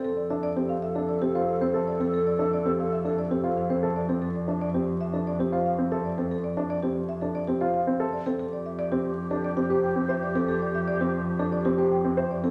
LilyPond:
<<
  \new Staff \with { instrumentName = "Marimba" } { \time 4/4 \key f \major \tempo 4 = 115 a'16 d''16 e''16 d''16 g'16 f''16 e''16 a'16 d''16 g'16 c''16 f''16 c''16 e''16 d''16 a'16 | a'16 d''16 e''16 d''16 g'16 f''16 e''16 a'16 d''16 g'16 c''16 f''16 c''16 e''16 d''16 a'16 | a'16 d''16 e''16 d''16 g'16 r16 e''16 a'16 d''16 g'16 c''16 f''16 r16 e''16 d''16 a'16 | a'16 d''16 e''16 d''16 g'16 r16 e''16 a'16 d''16 g'16 c''16 f''16 r16 e''16 d''16 a'16 |
a'16 d''16 e''16 d''16 g'16 r8 a'16 d''16 g'16 c''16 g''16 r16 e''16 d''16 a'16 | a'16 d''16 e''16 d''16 g'16 r8 a'16 d''16 g'16 c''16 g''16 r16 e''16 d''16 a'16 | }
  \new Staff \with { instrumentName = "Alto flute" } { \time 4/4 \key f \major a'1~ | a'2.~ a'8. r16 | r1 | r1 |
g'1~ | g'2.~ g'8. r16 | }
  \new Staff \with { instrumentName = "Grand piano" } { \time 4/4 \key f \major r8 d'16 r16 c'16 r8 d'16 r16 c'16 f'16 r16 c'16 a'16 r16 c'16 | r8 d'16 r16 c'16 r8 d'16 r16 c'16 f'16 r16 c'16 a'16 r16 c'16 | r8 d'16 r16 c'16 r8 d'16 r16 c'16 f'16 r16 c'16 a'16 r16 c'16 | r8 d'16 r16 c'16 r8 d'16 r16 c'16 f'16 r16 c'16 a'16 r16 c'16 |
r4 c'16 r8 d'16 r16 c'16 g'16 r16 c'16 c''16 r16 c'16 | r4 c'16 r8 d'16 r16 c'16 g'16 r16 c'16 c''16 r16 c'16 | }
  \new Staff \with { instrumentName = "Double bass" } { \clef bass \time 4/4 \key f \major f,1~ | f,1~ | f,1~ | f,1 |
f,1~ | f,1 | }
>>